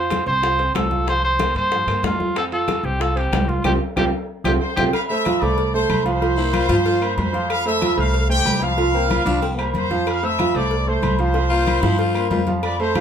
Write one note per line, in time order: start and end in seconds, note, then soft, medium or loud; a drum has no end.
0.00 0.21 F2 medium
0.00 0.21 F4 medium
0.00 0.24 C5 loud
0.00 0.21 F5 medium
0.10 high bongo medium
0.10 high conga loud
0.10 high timbale medium
0.10 low timbale medium
0.10 claves medium
0.26 0.72 C2 medium
0.26 0.40 C4 medium
0.26 0.40 C5 medium
0.26 0.72 C5 loud
0.26 high bongo soft
0.26 high conga soft
0.42 0.56 F4 medium
0.42 0.56 F5 medium
0.42 high bongo medium
0.42 high conga soft
0.42 high timbale medium
0.59 0.85 C4 medium
0.59 0.85 C5 medium
0.59 high bongo soft
0.59 high conga soft
0.59 high timbale medium
0.74 1.50 C2 medium
0.74 1.05 A4 medium
0.74 high bongo medium
0.74 low bongo medium
0.74 high conga medium
0.74 high timbale loud
0.74 low timbale medium
0.74 claves medium
0.91 1.04 F4 medium
0.91 1.05 F5 medium
0.91 high bongo soft
0.91 high conga medium
1.07 1.34 F3 medium
1.07 1.34 F4 medium
1.07 1.23 C5 loud
1.07 high bongo medium
1.07 high conga soft
1.07 high timbale medium
1.23 1.54 C5 loud
1.23 high bongo soft
1.23 high conga soft
1.39 1.67 A#3 medium
1.39 1.67 A#4 medium
1.39 high bongo medium
1.39 high conga loud
1.39 high timbale loud
1.39 low timbale medium
1.39 claves medium
1.55 1.85 G2 medium
1.55 2.06 C5 loud
1.55 high timbale medium
1.72 1.85 F3 medium
1.72 1.85 F4 medium
1.72 high bongo medium
1.72 high conga soft
1.87 2.02 G2 medium
1.87 2.15 A#3 medium
1.87 2.15 A#4 medium
1.87 high bongo soft
1.87 high conga soft
1.87 high timbale medium
1.87 claves medium
2.03 2.78 F2 medium
2.03 2.37 F4 medium
2.03 high bongo medium
2.03 low bongo medium
2.03 high conga medium
2.03 high timbale medium
2.03 low timbale medium
2.20 2.33 F4 medium
2.20 2.33 F5 medium
2.20 high bongo soft
2.20 high conga medium
2.36 2.49 C4 medium
2.36 2.45 A4 medium
2.36 2.49 C5 medium
2.36 high bongo medium
2.36 high conga soft
2.36 high timbale loud
2.36 claves medium
2.52 2.79 F4 medium
2.52 2.86 A4 medium
2.52 2.79 F5 medium
2.52 high conga soft
2.52 high timbale medium
2.68 high bongo medium
2.68 high conga loud
2.68 high timbale medium
2.68 low timbale medium
2.68 claves medium
2.83 3.29 C2 medium
2.83 2.98 C4 medium
2.83 3.03 G4 medium
2.83 2.98 C5 medium
2.83 high bongo soft
2.83 high conga soft
2.99 3.13 F4 medium
2.99 3.19 A4 medium
2.99 3.13 F5 medium
2.99 high bongo medium
2.99 high conga soft
2.99 high timbale medium
3.15 3.42 C4 medium
3.15 3.50 G4 medium
3.15 3.43 C5 medium
3.15 high bongo soft
3.15 high conga soft
3.15 high timbale medium
3.32 3.62 C2 medium
3.32 high bongo medium
3.32 low bongo medium
3.32 high conga medium
3.32 high timbale medium
3.32 low timbale medium
3.32 claves medium
3.48 3.62 F4 medium
3.48 3.64 F4 medium
3.48 3.62 F5 medium
3.48 high bongo soft
3.48 high conga medium
3.64 3.77 C2 loud
3.64 3.75 C4 loud
3.64 3.75 F4 medium
3.64 3.75 G4 loud
3.64 3.72 G4 medium
3.64 low bongo loud
3.64 high conga medium
3.64 high timbale loud
3.64 claves loud
3.96 4.09 C2 medium
3.96 4.07 C4 loud
3.96 4.07 F4 loud
3.96 4.07 G4 loud
3.96 4.05 G4 loud
3.96 low bongo loud
3.96 high conga loud
3.96 high timbale loud
3.96 claves loud
4.44 4.57 C2 loud
4.44 4.55 C4 loud
4.44 4.55 F4 loud
4.44 4.52 G4 loud
4.44 4.56 G4 medium
4.44 low bongo loud
4.44 high conga loud
4.44 high timbale loud
4.44 claves loud
4.61 4.91 C5 medium
4.61 4.91 C6 medium
4.76 4.89 C2 loud
4.76 4.88 C4 loud
4.76 4.88 F4 loud
4.76 4.84 G4 loud
4.76 4.88 G4 loud
4.76 low bongo loud
4.76 high conga medium
4.76 high timbale loud
4.76 claves loud
4.93 5.01 F5 loud
4.93 cowbell loud
4.93 high conga soft
4.93 low agogo loud
4.93 claves medium
5.09 5.23 A3 medium
5.09 5.23 A4 medium
5.09 5.24 C5 medium
5.09 5.39 E5 loud
5.09 5.40 E6 medium
5.09 high conga soft
5.09 low agogo medium
5.25 5.39 F3 medium
5.25 5.39 F4 medium
5.25 5.39 F5 medium
5.25 cowbell medium
5.25 high conga loud
5.25 low agogo loud
5.25 claves medium
5.41 5.86 C2 loud
5.41 5.68 A3 medium
5.41 5.68 A4 medium
5.41 5.68 C5 medium
5.41 5.74 D5 medium
5.41 5.74 D6 medium
5.41 high conga soft
5.41 low agogo medium
5.58 cowbell loud
5.58 high conga soft
5.73 6.00 A3 medium
5.73 6.00 A4 medium
5.73 6.03 C5 loud
5.73 6.01 C5 medium
5.73 6.04 C6 medium
5.73 high conga soft
5.90 6.64 C2 medium
5.90 cowbell medium
5.90 high conga medium
5.90 low agogo loud
5.90 claves medium
6.05 6.19 F3 medium
6.05 6.19 F4 medium
6.05 7.14 C5 loud
6.05 6.19 F5 medium
6.05 7.14 C6 medium
6.05 cowbell medium
6.05 high conga soft
6.21 6.34 F3 medium
6.21 6.35 F4 medium
6.21 6.35 F5 medium
6.21 cowbell loud
6.21 high conga soft
6.21 low agogo medium
6.37 6.64 A#3 medium
6.37 6.55 E4 loud
6.37 6.64 A#4 medium
6.37 6.65 C5 medium
6.37 high conga soft
6.53 6.68 F4 loud
6.53 cowbell medium
6.53 high conga loud
6.53 low agogo loud
6.53 claves medium
6.69 7.14 G2 loud
6.69 6.96 F3 medium
6.69 6.76 F4 loud
6.69 6.96 F4 medium
6.69 6.97 F5 medium
6.69 cowbell medium
6.69 high conga loud
6.69 low agogo medium
6.85 7.08 F4 medium
6.85 cowbell loud
6.85 high conga soft
7.01 7.28 A#3 medium
7.01 7.28 A#4 medium
7.01 7.28 C5 medium
7.01 high conga soft
7.01 low agogo loud
7.01 claves medium
7.16 7.92 F2 loud
7.16 7.47 C5 loud
7.16 7.48 C6 medium
7.16 cowbell medium
7.16 high conga medium
7.16 low timbale medium
7.16 low agogo medium
7.33 7.60 F3 medium
7.33 7.60 F4 medium
7.33 7.60 F5 medium
7.33 cowbell medium
7.49 7.66 F5 loud
7.49 cowbell loud
7.49 high conga soft
7.49 low agogo loud
7.49 claves medium
7.65 7.79 A3 medium
7.65 7.79 A4 medium
7.65 7.79 C5 medium
7.65 7.96 E5 loud
7.65 7.97 E6 medium
7.65 high conga soft
7.65 low agogo medium
7.82 7.95 F3 medium
7.82 7.95 F4 medium
7.82 7.95 F5 medium
7.82 cowbell medium
7.82 high conga loud
7.82 low agogo loud
7.82 claves medium
7.97 8.43 C2 loud
7.97 8.24 A3 medium
7.97 8.24 A4 medium
7.97 8.24 C5 medium
7.97 8.28 F5 loud
7.97 high conga soft
7.97 low agogo medium
8.14 cowbell loud
8.14 high conga soft
8.29 8.56 A3 medium
8.29 8.60 G4 loud
8.29 8.56 A4 medium
8.29 8.56 C5 medium
8.29 8.60 G5 loud
8.29 high conga soft
8.45 9.20 C2 medium
8.45 cowbell medium
8.45 high conga medium
8.45 low timbale medium
8.45 low agogo loud
8.45 claves medium
8.62 8.75 F3 loud
8.62 8.76 F4 medium
8.62 9.48 F5 loud
8.62 8.76 F5 medium
8.62 cowbell medium
8.62 high conga soft
8.77 8.91 F3 medium
8.77 8.91 F4 medium
8.77 8.92 F5 medium
8.77 cowbell loud
8.77 high conga soft
8.77 low agogo medium
8.93 9.21 A#3 medium
8.93 9.10 C4 medium
8.93 9.21 A#4 medium
8.93 9.21 C5 medium
8.93 high conga soft
9.09 9.25 F4 loud
9.09 cowbell medium
9.09 high conga loud
9.09 low agogo loud
9.09 claves medium
9.25 9.71 C2 loud
9.25 9.52 F3 medium
9.25 9.41 D4 loud
9.25 9.53 F4 medium
9.25 9.53 F5 medium
9.25 cowbell medium
9.25 high conga loud
9.25 low agogo medium
9.42 9.65 C4 medium
9.42 cowbell loud
9.42 high conga soft
9.58 9.85 A#3 medium
9.58 9.85 A#4 medium
9.58 9.85 C5 medium
9.58 high conga soft
9.58 low agogo loud
9.58 claves medium
9.74 10.49 F2 medium
9.74 10.05 C5 medium
9.74 10.05 C6 medium
9.74 cowbell medium
9.74 high conga medium
9.74 low agogo medium
9.90 10.17 F3 medium
9.90 10.17 F4 medium
9.90 10.17 F5 medium
9.90 cowbell medium
9.90 high conga medium
10.07 10.24 F5 loud
10.07 cowbell loud
10.07 high conga soft
10.07 low agogo loud
10.07 claves medium
10.23 10.36 A3 medium
10.23 10.36 A4 medium
10.23 10.36 C5 medium
10.23 10.56 E5 loud
10.23 10.56 E6 medium
10.23 high conga soft
10.23 low agogo medium
10.39 10.52 F3 medium
10.39 10.52 F4 medium
10.39 10.53 F5 medium
10.39 cowbell medium
10.39 high conga loud
10.39 low agogo loud
10.39 claves medium
10.55 10.99 C2 loud
10.55 10.82 A3 medium
10.55 10.82 A4 medium
10.55 10.82 C5 medium
10.55 10.87 D5 loud
10.55 10.87 D6 medium
10.55 high conga soft
10.55 low agogo medium
10.71 cowbell loud
10.71 high conga soft
10.87 11.13 A3 medium
10.87 11.14 A4 medium
10.87 11.18 C5 medium
10.87 11.14 C5 medium
10.87 11.19 C6 medium
10.87 high conga soft
11.02 11.77 C2 medium
11.02 cowbell medium
11.02 high conga medium
11.02 low agogo loud
11.02 claves medium
11.18 11.32 F3 medium
11.18 11.32 F4 medium
11.18 12.44 C5 loud
11.18 11.33 F5 loud
11.18 12.44 C6 medium
11.18 cowbell medium
11.18 high conga soft
11.34 11.48 F3 medium
11.34 11.48 F4 medium
11.34 11.49 F5 medium
11.34 cowbell loud
11.34 high conga soft
11.34 low agogo medium
11.50 11.78 A#3 medium
11.50 11.83 F4 loud
11.50 11.78 A#4 medium
11.50 11.78 C5 medium
11.50 high conga soft
11.67 cowbell medium
11.67 high conga loud
11.67 low agogo loud
11.67 claves medium
11.81 12.27 G2 medium
11.81 12.09 F3 medium
11.81 12.00 E4 loud
11.81 12.09 F4 medium
11.81 12.10 F5 medium
11.81 cowbell medium
11.81 high conga loud
11.81 low agogo medium
11.99 12.30 F4 loud
11.99 cowbell loud
11.99 high conga soft
12.14 12.41 A#3 medium
12.14 12.41 A#4 medium
12.14 12.42 C5 medium
12.14 high conga soft
12.14 low agogo loud
12.14 claves medium
12.30 13.01 F2 loud
12.30 12.53 F4 medium
12.30 cowbell medium
12.30 high conga medium
12.30 low timbale medium
12.30 low agogo medium
12.47 12.73 F3 medium
12.47 12.74 F4 medium
12.47 12.74 F5 loud
12.47 cowbell medium
12.47 high conga medium
12.63 12.79 D5 loud
12.63 12.79 D6 medium
12.63 cowbell loud
12.63 high conga soft
12.63 low agogo loud
12.63 claves medium
12.79 12.93 A3 medium
12.79 12.93 A4 medium
12.79 13.01 C5 loud
12.79 12.93 C5 medium
12.79 13.01 C6 medium
12.79 high conga soft
12.79 low agogo medium
12.95 13.01 F3 medium
12.95 13.01 F4 medium
12.95 13.01 F5 medium
12.95 cowbell medium
12.95 high conga loud
12.95 low agogo loud
12.95 claves medium